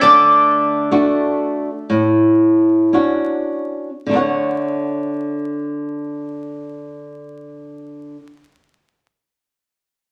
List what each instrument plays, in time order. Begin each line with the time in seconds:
0.01 nylon-string guitar D3, twelve-string acoustic guitar A3, mandolin D5
0.91 nylon-string guitar A3 D4 F#4
1.90 nylon-string guitar A2
2.93 nylon-string guitar C#4 D4 F#4
4.06 nylon-string guitar D3 A3
4.11 nylon-string guitar D4 A4
4.15 nylon-string guitar C#5 F#5